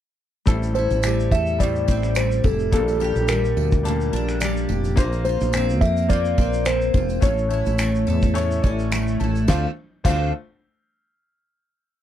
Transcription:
0.46 A1 A2 G3 C4 E4 A4, kick, tambourine, shaker
0.63 tambourine, shaker
0.74 G3 C4 E4 A4 C5, tambourine
0.90 A1, tambourine, shaker
1.03 G3, finger snap, tambourine, shaker
1.20 shaker
1.31 E2 A4 E5, kick, tambourine
1.47 shaker
1.58 A2 G3 C4 E4 G4 D5, kick, tambourine, shaker
1.75 shaker
1.88 A1 C4, kick, tambourine, shaker
2.03 finger snap, shaker
2.15 G3 C5, finger snap, tambourine, shaker
2.31 shaker
2.44 F1 E4 A4, kick, tambourine
2.59 shaker
2.71 A#1 A#2 G3 A#3 D4 A4, kick, tambourine, shaker
2.88 tambourine, shaker
2.99 G3 A#3 D4 G4, tambourine
3.16 A#1, shaker
3.28 G3 A#4, finger snap, tambourine, shaker
3.45 shaker
3.57 D2, tambourine
3.72 kick, tambourine, shaker
3.83 A#2 G3 A3 D4 A5, tambourine, shaker
3.90 A#3
4.01 shaker
4.13 A#1 D4 A5, tambourine
4.29 finger snap, shaker
4.40 G3 D5, finger snap, tambourine, shaker
4.56 shaker
4.69 F1 G4, tambourine
4.84 tambourine, shaker
4.96 A#1 A#3 C4 F4 C5, kick, tambourine, shaker
5.13 tambourine, shaker
5.24 A#3 C4 F4 C5, tambourine
5.41 A#1, tambourine, shaker
5.53 C4, finger snap, tambourine, shaker
5.69 shaker
5.81 F2 A#4 E5, kick, tambourine
5.97 tambourine, shaker
6.09 A#3 C4 F4 C5 D5, kick, tambourine, shaker
6.25 shaker
6.38 A#1 C4, kick, tambourine
6.53 shaker
6.65 C4 C5, finger snap, tambourine, shaker
6.81 shaker
6.94 E1 F4, kick, tambourine
7.09 tambourine, shaker
7.21 A1 A2 A3 C#4 E4 C#5, kick, tambourine, shaker
7.38 shaker
7.49 A3 C#4 E4 C#5, tambourine
7.66 A1, tambourine, shaker
7.78 A3, finger snap, tambourine, shaker
7.95 shaker
8.07 E2 A4, tambourine
8.22 kick, tambourine, shaker
8.34 A2 A3 C#4 E4 C#5, tambourine, shaker
8.51 shaker
8.62 A1 C#4 D5, kick, tambourine
8.79 shaker
8.91 A3 E5, finger snap, tambourine, shaker
9.07 shaker
9.20 A1 E4 A5, tambourine
9.35 tambourine, shaker
9.48 D2 D3 A3 C4 D4 F4 A4 C5 F5, kick, snare, tambourine
10.04 D2 D3 A3 C4 D4 F4 A4 C5 F5, kick, crash, tambourine

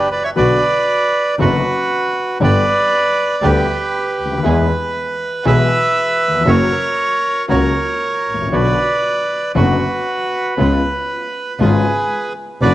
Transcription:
0.11 B4 D5
0.23 C#5 E5
0.36 B1 B2 D3 F#3 B3 D4 F#4 B4 D5
1.39 F#1 F#2 D3 F#3 B3 D4 F#4 B4
2.40 G1 G2 D3 G3 B3 D4 G4 B4 D5
3.42 D2 D3 G3 B3 D4 G4 B4
4.19 D2
4.25 C#2
4.31 D2
4.38 D#2
4.44 E2 E3 G#3 B3 E4 G#4
5.45 B1 B2 E3 G#3 B3 E4 G#4 B4 E5
6.28 D#2
6.34 E2
6.41 F2
6.45 F#1 F#2 C#3 F#3 A#3 C#4 F#4 A#4 C#5
7.48 C#2 C#3 F#3 A#3 C#4 F#4 A#4 C#5
8.27 A1
8.34 G#1
8.41 A1
8.47 A#1
8.52 B1 B2 D3 F#3 B3 D4 F#4 B4 D5
9.55 F#1 F#2 D3 F#3 B3 D4 F#4 B4
10.57 C#2 C#3 G#3 B3 C#4 F4
11.60 G#1 G#2 C#3 G#3 B3 C#4 F4 G#4 B4
12.62 F#1 F#2 D3 F#3 B3 D4 F#4 B4 D5

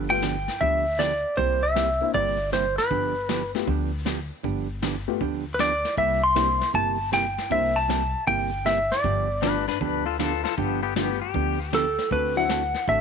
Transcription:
Already playing: G1
0.09 G3 A3 B3 F4 G5
0.22 D3 F3 B3 D4 G4, snare, hi-hat pedal
0.48 snare
0.61 D2 D3 F3 B3 D4 G4 E5, brush sweep, kick
0.99 D3 F3 B3 D4 G4 D5, snare, hi-hat pedal
1.37 C2 C3 G3 A#3 E4 G4 C5, brush sweep, kick
1.63 E5
1.75 C3 G3 A#3 E4 G4, snare, hi-hat pedal
2.01 A#3 C4 D4 E4
2.14 G1 C3 G3 A#3 E4 G4 D5, brush sweep, kick
2.52 C3 G3 A#3 E4 G4 C5, snare, hi-hat pedal
2.78 B4, snare
2.90 G1 D3 F3 B3 D4 G4, brush sweep, kick
3.29 D3 F3 B3 D4 G4, snare, hi-hat pedal
3.55 A3 B3 F4 G4, snare
3.67 D2 D3 F3 B3 D4 G4, brush sweep, kick
4.05 D3 F3 B3 D4 G4, snare, hi-hat pedal
4.43 G1 D3 F3 B3 D4 G4, brush sweep, kick
4.82 D3 F3 B3 D4 G4, snare, hi-hat pedal
5.08 A3 B3 F4 G4
5.21 D2 D3 F3 B3 D4 G4, brush sweep, kick
5.54 B4
5.59 D3 F3 B3 D4 G4 D5, snare, hi-hat pedal
5.85 snare
5.97 C2 C3 G3 A#3 E4 G4 E5, brush sweep, kick
6.24 C6
6.35 C3 G3 A#3 C4 D4 E4 G4, snare, hi-hat pedal
6.61 snare
6.74 G1 C3 G3 A#3 E4 G4 A5, brush sweep, kick
7.12 C3 G3 A#3 E4 G4 G5, snare, hi-hat pedal
7.38 snare
7.50 C2 C3 G3 A#3 C4 D4 E4 G4 E5, brush sweep, kick
7.76 A5
7.89 C3 G3 A#3 E4 G4, snare, hi-hat pedal
8.27 G1 C3 G3 A#3 E4 G4 G5, brush sweep, kick
8.65 C3 G3 A#3 E4 G4 E5, snare, hi-hat pedal
8.92 D5, snare
9.04 G1 D3 F3 B3 D4 G4, brush sweep, kick
9.42 D3 F3 G3 A3 B3 D4 F4 G4 B4, snare, hi-hat pedal
9.68 D4 B4, snare
9.81 D2 D3 F3 B3 D4 G4 B4, brush sweep, kick
10.06 F4 A4
10.19 D3 F3 B3 D4 F4 G4 A4, snare, hi-hat pedal
10.44 F4 A4, snare
10.57 G1 D3 F3 B3 D4 G4, brush sweep, kick
10.83 B3 G4
10.96 D3 F3 G3 A3 B3 D4 F4 G4, snare, hi-hat pedal
11.22 G4
11.34 D2 D3 F3 B3 D4 G4, brush sweep, kick
11.73 D3 F3 B3 D4 G4 A4, snare, hi-hat pedal
11.99 snare
12.11 D2 D3 A3 C4 F#4 A4 B4, brush sweep, kick
12.36 F#3 C4 D4 E4 F#5
12.49 D3 A3 C4 F#4 A4, snare, hi-hat pedal
12.74 snare
12.87 A1 D3 A3 C4 F#4 A4 E5, brush sweep, kick

